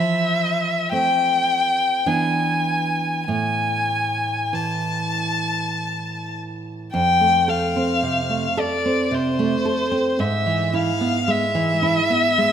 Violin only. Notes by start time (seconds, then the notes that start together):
Already playing: E5
0.93 G5
2.07 G#5
3.28 G#5
4.54 A5
6.93 G5
7.49 F5
8.59 D5
9.14 C5
10.20 E5
10.77 F5
11.30 E5